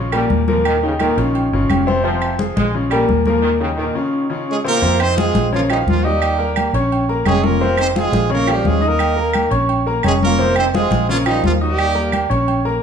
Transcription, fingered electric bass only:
0.00 0.26 A#1 medium
0.30 1.11 D#2 medium
1.17 1.50 A#1 medium
1.52 1.68 G1 medium
1.69 2.50 F1 medium
2.57 3.05 A#1 loud
3.09 3.90 D#2 loud
4.82 5.31 F2 loud
5.34 5.83 A#1 medium
5.87 6.68 D#2 medium
6.73 7.22 A#1 loud
7.25 8.07 F1 loud
8.12 8.61 A#1 loud
8.64 9.46 D#2 loud
9.51 10.00 A#1 loud
10.04 10.85 F1 medium
10.91 11.39 A#1 medium
11.43 12.24 D#2 loud
12.30 12.79 A#1 loud

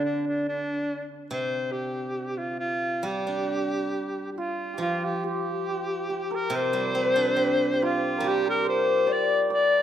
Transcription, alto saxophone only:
0.04 0.25 D4 medium
0.27 0.47 D4 medium
0.48 1.08 D4 medium
1.32 1.73 C5 medium
1.72 2.40 G4 medium
2.38 2.59 F4 medium
2.60 3.07 F4 medium
3.06 4.30 G4 medium
4.32 4.40 G4 soft
4.38 4.81 F4 medium
4.81 5.06 F4 medium
5.05 5.25 G4 medium
5.26 6.37 G4 medium
6.35 6.57 A#4 medium
6.56 7.86 C5 medium
7.84 8.30 F4 medium
8.28 8.47 G4 medium
8.50 8.68 A#4 medium
8.69 9.14 C5 medium
9.13 9.42 D5 medium
9.54 9.82 D5 medium

